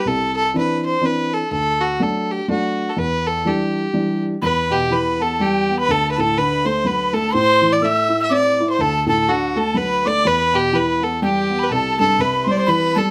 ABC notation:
X:1
M:3/4
L:1/16
Q:"Swing" 1/4=124
K:Em
V:1 name="Tin whistle"
z12 | z12 | z12 | b2 g2 b2 a2 g3 b |
a2 a2 b2 c'2 b2 a2 | c'3 d' e'3 e' d'3 c' | a2 a2 f2 a2 b2 d'2 | b2 g2 b2 z2 g3 b |
a2 a2 b2 c' c' b2 a2 |]
V:2 name="Fiddle"
A2 A2 B2 c2 B2 A2 | A2 F2 A2 G2 F3 A | B2 A2 G6 z2 | B2 G2 B2 A2 G3 B |
A3/2 B/2 A2 B2 c2 B2 A2 | c3 d e3 e d3 c | A2 A2 F2 A2 B2 d2 | B2 G2 B2 A2 G3 B |
A2 A2 B2 c/2 d/2 c B2 A2 |]
V:3 name="Upright piano" clef=bass
C,,4 [E,CD]4 [E,CD]4 | D,,4 [F,A,D]4 [F,A,D]4 | E,,4 [E,G,D]4 [E,G,D]4 | E,,2 B,,2 E,2 B,2 G,2 B,2 |
D,,2 A,,2 D,2 A,2 F,2 A,2 | A,,2 E,2 A,2 E2 C2 E2 | D,,2 A,,2 D,2 A,2 F,2 A,2 | E,,2 B,,2 E,2 B,2 G,2 B,2 |
C,,2 G,,2 C,2 G,2 E,2 G,2 |]